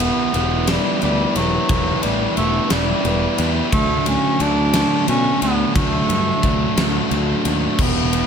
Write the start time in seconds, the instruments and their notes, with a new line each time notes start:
Already playing: distorted electric guitar E3 B3, bass clarinet B3
0.00 distorted electric guitar B3 E4 G4 B4, ride
0.33 picked electric bass E1, distorted electric guitar E3 B3 E4 G4 B4, ride
0.67 bass clarinet G3, distorted electric guitar B3 E4 G4 B4, snare, ride
1.00 picked electric bass D2, distorted electric guitar E3 B3 E4 G4 B4, bass clarinet G3, ride
1.36 picked electric bass E1, bass clarinet F#3, distorted electric guitar B3 E4 G4 B4, ride
1.69 picked electric bass E1, distorted electric guitar E3 B3 E4 G4 B4, kick, ride
2.03 picked electric bass A1, bass clarinet G3, distorted electric guitar B3 E4 G4 B4, ride
2.36 picked electric bass E1, distorted electric guitar E3 B3 E4 G4 B4, bass clarinet A3, ride
2.70 picked electric bass E1, bass clarinet G3, distorted electric guitar B3 E4 G4 B4, snare, ride
3.04 picked electric bass E1, distorted electric guitar E3 B3 E4 G4 B4, ride
3.38 picked electric bass E2, distorted electric guitar B3 E4 G4 B4, ride
3.72 picked electric bass D2, distorted electric guitar D3 F#3 A3 D4 F#4, bass clarinet A3, kick, ride
4.05 distorted electric guitar A3 D4 F#4, bass clarinet C#4, ride
4.39 picked electric bass D2, distorted electric guitar F#3 A3 D4 F#4, bass clarinet D4, ride
4.73 distorted electric guitar A3 D4 F#4, snare, ride
5.07 picked electric bass B2, distorted electric guitar F#3 A3 D4 F#4, bass clarinet C#4, ride
5.41 picked electric bass D2, distorted electric guitar A3 D4 F#4, bass clarinet B3, ride
5.74 picked electric bass D2, distorted electric guitar D3 F#3 A3 D4 F#4, bass clarinet A3, kick, ride
6.08 picked electric bass G2, distorted electric guitar A3 D4 F#4, ride
6.41 picked electric bass D2, distorted electric guitar F#3 A3 D4 F#4, kick, ride
6.76 picked electric bass D2, distorted electric guitar A3 D4 F#4, snare, ride
7.10 picked electric bass D2, distorted electric guitar F#3 A3 D4 F#4, ride
7.44 picked electric bass D#2, distorted electric guitar A3 D4 F#4, ride
7.71 bass clarinet A3
7.78 picked electric bass E1, distorted electric guitar E3 B3 E4 G4, bass clarinet B3, kick, crash
8.11 distorted electric guitar B3 E4 G4, ride